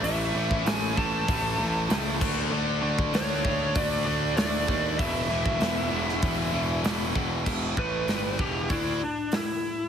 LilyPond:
<<
  \new Staff \with { instrumentName = "Lead electric guitar" } { \time 4/4 \key d \lydian \tempo 4 = 97 e''4 gis''8 a''2 r8 | r4 cis''4 d''8 d''8 d''4 | e''2. r4 | r8 b'4 g'8 e'8 d'8 e'4 | }
  \new Staff \with { instrumentName = "Overdriven electric guitar" } { \clef bass \time 4/4 \key d \lydian <a, e a>8 <a, e a>8 <a, e a>8 <a, e a>8 <a, e a>8 <a, e a>8 <a, e a>8 <d a d'>8 | <d a d'>8 <d a d'>8 <d a d'>8 <d a d'>8 <d a d'>8 <d a d'>8 <d a d'>8 <d a d'>8 | <e, b, e>8 <e, b, e>8 <e, b, e>8 <e, b, e>8 <e, b, e>8 <e, b, e>8 <e, b, e>8 <e, b, e>8 | <e, b, e>8 <a, e a>8 <g, d g>8 <e, b, e>8 <d a d'>8 r4. | }
  \new Staff \with { instrumentName = "Picked electric bass" } { \clef bass \time 4/4 \key d \lydian a,,8 a,,8 a,,8 a,,8 a,,8 a,,8 cis,8 d,8 | d,8 d,8 d,8 d,8 d,8 d,8 d,8 dis,8 | e,,8 e,,8 e,,8 e,,8 e,,8 e,,8 e,,8 e,,8 | e,,8 a,,8 g,,8 e,,8 d,8 r4. | }
  \new DrumStaff \with { instrumentName = "Drums" } \drummode { \time 4/4 hho8. bd16 <hho sn>8 bd8 <hho bd>4 <hho sn>8 <cymc bd>8 | r8. bd16 <hho sn>8 bd8 <hho bd>4 <hho sn>8 bd8 | <hho bd>8. bd16 <hho sn>8. sn16 <hho bd>4 <hho sn>8 bd8 | <cymc bd>8 bd8 <hho sn>8 bd8 <hho bd>4 <hho sn>4 | }
>>